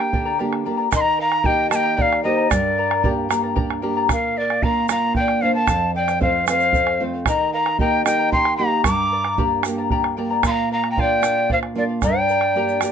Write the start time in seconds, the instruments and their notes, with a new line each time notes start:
Already playing: nylon-string guitar A#3 D4 G4, charango G4 A#4 D5 G5 A#5, quena G5
0.00 bombo rim
0.13 nylon-string guitar D3, charango A#4 D5 G5 A#5, bombo rim, bombo low
0.25 charango A#4 D5 A#5, bombo rim
0.39 nylon-string guitar A#3 D4 G4, charango G4 A#4 D5 G5 A#5
0.53 bombo rim
0.65 nylon-string guitar A#3 D4 G4, charango A#4 D5 G5 A#5
0.77 charango A#4 D5 A#5
0.90 nylon-string guitar D#3, charango G4 A#4 D#5 G5 A#5, pan flute D#5, bombo rim, bombo low, shaker
0.96 quena C6
1.01 quena A#5
1.18 charango A#4 D#5 G5 A#5, pan flute F5, quena A#5
1.30 charango A#4 D#5 A#5, bombo rim
1.43 nylon-string guitar A#3 D#4 G4, charango G4 A#4 D#5 G5 A#5, pan flute D#5, quena G5, bombo low
1.70 nylon-string guitar A#3 D#4 G4, charango A#4 D#5 G5 A#5, pan flute D#5, quena A5, bombo rim, shaker
1.75 quena G5
1.83 charango A#4 D#5 A#5
1.97 charango G4 A#4 D#5 G5 A#5, pan flute D5, quena G5, bombo rim, bombo low
2.02 quena F5
2.12 bombo rim
2.23 nylon-string guitar A#3 D#4 G4, charango A#4 D#5 G5 A#5, pan flute C5, quena D#5, bombo rim
2.37 charango A#4 D#5 A#5
2.50 nylon-string guitar G2, charango G4 A#4 D5 G5 A#5, pan flute A#4, quena D5, bombo rim, bombo low, shaker
2.77 charango A#4 D5 G5 A#5
2.90 charango A#4 D5 A#5, bombo rim
3.03 nylon-string guitar A#3 D4 G4, charango G4 A#4 D5 G5 A#5, bombo low
3.29 nylon-string guitar A#3 D4 G4, charango A#4 D5 G5 A#5, bombo rim, shaker
3.43 charango A#4 D5 A#5
3.55 charango G4 A#4 D5 G5 A#5, bombo rim, bombo low
3.70 bombo rim
3.82 nylon-string guitar A#3 D4 G4, charango A#4 D5 G5 A#5, bombo rim
3.97 charango A#4 D5 A#5
4.09 nylon-string guitar A#2, charango A#4 D5 F5, pan flute A#4, quena F5, bombo rim, bombo low, shaker
4.36 charango A#4 D5 F5, pan flute A#4, quena D5
4.50 charango D5 F5, bombo rim
4.63 nylon-string guitar A#3 D4 F4, charango A#4 D5 F5, pan flute F5, quena A#5, bombo low
4.89 nylon-string guitar A#3 D4 F4, charango A#4 D5 F5, pan flute F5, quena A#5, bombo rim, shaker
5.03 charango D5 F5
5.15 charango A#4 D5 F5, quena G5, bombo rim, bombo low
5.19 pan flute D5
5.28 bombo rim
5.42 nylon-string guitar A#3 D4 F4, charango A#4 D5 F5, pan flute C5, quena F5, bombo rim
5.54 charango D5 F5, pan flute F5, quena A5
5.67 nylon-string guitar F2, charango A4 C5 F5, bombo rim, bombo low, shaker
5.94 charango A4 C5 F5, pan flute D5, quena G5
6.08 charango C5 F5, bombo rim, shaker
6.20 nylon-string guitar A3 C4 F4, charango A4 C5 F5, pan flute C5, quena F5, bombo rim, bombo low
6.47 nylon-string guitar A3 C4 F4, charango A4 C5 F5, pan flute C5, quena F5, bombo rim, shaker
6.61 charango F5, bombo rim, shaker
6.73 charango A4 C5 F5, bombo low, shaker
6.87 bombo rim
7.00 nylon-string guitar A3 C4 F4, charango A4 C5 F5
7.14 charango C5 F5
7.26 nylon-string guitar D#3, charango G4 A#4 D#5 G5 A#5, pan flute D#5, quena A#5, bombo rim, bombo low, shaker
7.53 charango A#4 D#5 G5 A#5, pan flute F5, quena A#5
7.66 charango A#4 D#5 A#5, bombo rim
7.79 nylon-string guitar A#3 D#4 G4, charango G4 A#4 D#5 G5 A#5, pan flute D#5, quena G5, bombo low
8.05 nylon-string guitar A#3 D#4 G4, charango A#4 D#5 G5 A#5, pan flute D#5, quena G5, bombo rim, shaker
8.19 charango A#4 D#5 A#5
8.32 charango G4 A#4 D#5 G5 A#5, pan flute G5, quena C6, bombo rim, bombo low
8.45 bombo rim
8.57 nylon-string guitar A#3 D#4 G4, charango A#4 D#5 G5 A#5, pan flute F5, quena A#5, bombo rim
8.72 charango A#4 D#5 A#5
8.84 nylon-string guitar G2, charango G4 A#4 D5 G5 A#5, pan flute A#5, quena D6, bombo rim, bombo low, shaker
9.12 charango A#4 D5 G5 A#5
9.24 charango A#4 D5 A#5, bombo rim
9.38 nylon-string guitar A#3 D4 G4, charango G4 A#4 D5 G5 A#5, bombo low
9.63 nylon-string guitar A#3 D4 G4, charango A#4 D5 G5 A#5, bombo rim, shaker
9.78 charango A#4 D5 A#5
9.91 charango G4 A#4 D5 G5 A#5, bombo rim, bombo low
10.04 bombo rim
10.17 nylon-string guitar A#3 D4 G4, charango A#4 D5 G5 A#5, bombo rim
10.30 charango A#4 D5 A#5
10.43 nylon-string guitar A#2, charango A#4 D5 F5, pan flute F5, quena C6, bombo rim, bombo low, shaker
10.51 quena A#5
10.71 charango A#4 D5 F5, pan flute F5, quena A#5
10.84 charango D5, bombo rim
10.90 pan flute G5, quena A#5
10.96 nylon-string guitar A#3 D4 F4, charango A#4 D5 F5, bombo low
11.00 pan flute D5, quena G5
11.22 nylon-string guitar A#3 D4 F4, charango A#4 D5 F5, bombo rim, shaker
11.37 charango D5 F5
11.50 charango A#4 D5 F5, pan flute C5, quena F5, bombo rim, bombo low
11.63 bombo rim
11.75 nylon-string guitar A#3 D4 F4, charango A#4 D5 F5, pan flute A#4, quena D5, bombo rim
11.89 charango D5 F5
12.02 nylon-string guitar G2, charango G4 A#4 D5 G5 A#5, pan flute D5, quena G5, bombo rim, bombo low, shaker
12.15 bombo rim
12.29 charango A#4 D5 G5 A#5, shaker
12.41 charango A#4 D5 A#5, bombo rim
12.55 nylon-string guitar A#3 D4 G4, charango G4 A#4 D5 G5 A#5
12.69 shaker
12.81 nylon-string guitar A#3 D4 G4, charango A#4 D5 G5 A#5, bombo rim, shaker